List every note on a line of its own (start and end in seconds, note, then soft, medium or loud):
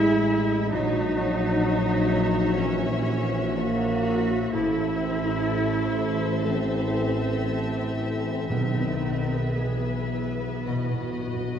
0.00 0.68 A1 medium
0.00 0.69 A1 medium
0.00 0.77 A2 medium
0.00 0.77 E3 medium
0.00 0.73 G#3 loud
0.00 1.18 C#4 medium
0.00 0.27 E4 medium
0.00 0.69 E4 loud
0.00 0.69 G#4 medium
0.00 0.77 G#4 medium
0.00 0.11 A4 medium
0.00 0.69 E5 medium
0.00 0.70 E5 medium
0.29 2.08 E4 medium
0.72 4.37 A#1 medium
0.72 4.50 A#1 medium
0.72 2.56 A#2 medium
0.72 2.58 F#3 loud
0.72 2.54 D#4 loud
0.72 4.50 F#4 medium
0.72 4.50 C#5 medium
0.72 4.50 E5 medium
1.19 3.07 C#4 medium
1.65 3.57 F#4 medium
2.10 4.05 E4 medium
2.57 4.57 A#2 medium
2.57 3.57 E3 medium
2.57 3.59 C#4 loud
3.08 4.57 C#4 medium
3.58 4.36 A#3 loud
3.58 4.57 F#4 medium
3.58 4.54 F#4 loud
4.06 5.95 E4 medium
4.53 8.46 A1 medium
4.53 8.43 A2 medium
4.53 6.40 A3 loud
4.53 6.41 E4 loud
4.53 8.46 A4 medium
4.53 8.47 C5 medium
4.53 10.64 E5 medium
5.00 6.93 C4 medium
5.48 7.43 A4 medium
5.97 7.96 E4 medium
6.44 8.50 E3 medium
6.44 8.55 E3 medium
6.44 8.49 C4 loud
6.94 8.55 C4 medium
7.44 8.55 A4 medium
7.97 10.13 E4 medium
8.49 11.59 B1 medium
8.49 10.10 B2 medium
8.49 10.66 B2 medium
8.49 9.57 D#3 medium
8.49 9.57 C4 loud
8.49 10.63 G#4 medium
8.49 11.59 B4 medium
9.05 11.19 B3 soft
9.58 11.59 E3 medium
9.58 11.59 B3 medium
9.58 10.72 G#4 medium
10.14 10.72 E4 medium
10.66 10.75 B2 soft
10.66 11.59 B2 medium
10.66 11.59 F#4 medium
10.66 11.59 D#5 medium
10.76 10.84 B2 soft
10.85 10.93 B2 soft
10.94 11.01 B2 soft
11.03 11.10 B2 soft
11.11 11.18 B2 soft
11.19 11.26 B2 soft
11.19 11.59 B3 medium
11.28 11.35 B2 medium
11.36 11.45 B2 medium
11.46 11.53 B2 soft
11.54 11.59 B2 medium